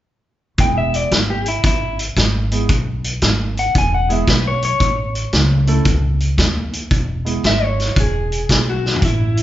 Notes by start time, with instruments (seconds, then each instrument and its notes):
0.58 upright bass E1, grand piano G#3 B3 E4 G#4, clean electric guitar G5, kick, closed hi-hat
0.78 clean electric guitar E5
0.94 clean electric guitar D5, closed hi-hat
1.11 upright bass G#1, clean electric guitar B4, snare, closed hi-hat
1.30 clean electric guitar G4
1.46 clean electric guitar E4, closed hi-hat
1.64 upright bass G#1, clean electric guitar E4, kick, closed hi-hat
1.99 closed hi-hat
2.17 upright bass G#1, kick, snare, closed hi-hat
2.52 grand piano G#3 B3 E4 G#4, closed hi-hat
2.69 upright bass B1, kick, closed hi-hat
3.04 closed hi-hat
3.22 upright bass G#1, snare, closed hi-hat
3.57 clean electric guitar F#5, closed hi-hat
3.75 upright bass E1, clean electric guitar G#5, kick, closed hi-hat
3.94 clean electric guitar F#5
4.09 grand piano G#3 B3 E4 G#4, clean electric guitar E5, closed hi-hat
4.28 upright bass B1, clean electric guitar B4, kick, snare, closed hi-hat
4.47 clean electric guitar C#5
4.62 clean electric guitar C#5, closed hi-hat
4.80 upright bass A1, kick, closed hi-hat
5.15 closed hi-hat
5.33 upright bass C#2, snare, closed hi-hat
5.67 grand piano A3 C#4 E4 A4, closed hi-hat
5.85 upright bass C#2, kick, closed hi-hat
6.20 closed hi-hat
6.38 upright bass D#2, kick, snare, closed hi-hat
6.73 closed hi-hat
6.91 upright bass E1, kick, closed hi-hat
7.25 grand piano G#3 B3 E4 G#4, closed hi-hat
7.43 upright bass G#1, clean electric guitar E5, snare, closed hi-hat
7.64 clean electric guitar C#5
7.80 snare, closed hi-hat
7.96 upright bass E1, clean electric guitar G#4, kick, closed hi-hat
8.32 closed hi-hat
8.49 upright bass B1, kick, snare, closed hi-hat
8.70 clean electric guitar F#4
8.86 snare
8.96 floor tom
9.02 upright bass A1, clean electric guitar E4, kick, closed hi-hat
9.37 closed hi-hat